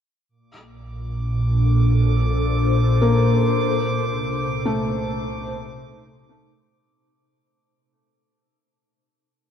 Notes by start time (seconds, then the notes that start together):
0.28 A#1 A#2 D6
1.01 D4
1.30 A4
1.76 C5
3.01 A#3
3.56 C2 C3
4.65 A3
5.03 D#4